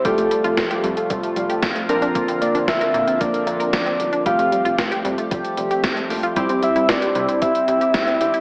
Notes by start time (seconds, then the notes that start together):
Already playing: G3
0.05 F1 C3 F3 G3 A3 F4 G4 A4, kick, closed hi-hat
0.18 F1 A3, closed hi-hat
0.31 G3, closed hi-hat
0.44 F1 F4, closed hi-hat
0.57 F1, kick, snare, closed hi-hat
0.71 G4, closed hi-hat
0.84 F2 G3, closed hi-hat
0.97 A3, closed hi-hat
1.10 F1 G3, kick, closed hi-hat
1.23 closed hi-hat
1.36 F1 G3, closed hi-hat
1.50 G4, closed hi-hat
1.63 F1, kick, snare, closed hi-hat
1.76 A3, closed hi-hat
1.89 A#1 D3 F3 A#3 C4 D4 A#4, closed hi-hat
2.02 D4, closed hi-hat
2.15 A#3, kick, closed hi-hat
2.28 A#1 C4, closed hi-hat
2.42 A#3 D5, closed hi-hat
2.55 A#1 D4, closed hi-hat
2.68 A#1 E5, kick, snare, closed hi-hat
2.81 A#4, closed hi-hat
2.94 A#2 A#3, closed hi-hat
3.07 C4, closed hi-hat
3.20 A#1 A#3 D5, kick, closed hi-hat
3.34 closed hi-hat
3.47 A#1 A#3, closed hi-hat
3.60 A#4, closed hi-hat
3.73 A#1 D5, kick, snare, closed hi-hat
3.86 C4, closed hi-hat
3.99 G1, closed hi-hat
4.13 D4, closed hi-hat
4.26 F1 G3 A3 F4 G4 F5, kick, closed hi-hat
4.39 F1 A3, closed hi-hat
4.52 G3, closed hi-hat
4.65 F1 F4, closed hi-hat
4.78 F1, kick, snare, closed hi-hat
4.92 G4, closed hi-hat
5.05 F2 G3, closed hi-hat
5.18 A3, closed hi-hat
5.31 F1 G3, kick, closed hi-hat
5.45 closed hi-hat
5.57 F1 G3, closed hi-hat
5.71 G4, closed hi-hat
5.84 F1, kick, snare, closed hi-hat
5.97 A3, closed hi-hat
6.10 A#1 A3 F4 G4, open hi-hat
6.23 F4, closed hi-hat
6.36 C2 G3 C4 E4 G4, kick, closed hi-hat
6.49 C2 C4, closed hi-hat
6.63 G3 E5, closed hi-hat
6.76 C2 E4, closed hi-hat
6.89 C2 D5, kick, snare, closed hi-hat
7.02 G4, closed hi-hat
7.15 C3 G3, closed hi-hat
7.29 C4, closed hi-hat
7.42 C2 G3 E5, kick, closed hi-hat
7.55 closed hi-hat
7.68 C2 G3, closed hi-hat
7.81 G4, closed hi-hat
7.94 C2, kick, snare, closed hi-hat
8.07 C4, closed hi-hat
8.21 G1 C4 E4 G4, closed hi-hat
8.34 E4, closed hi-hat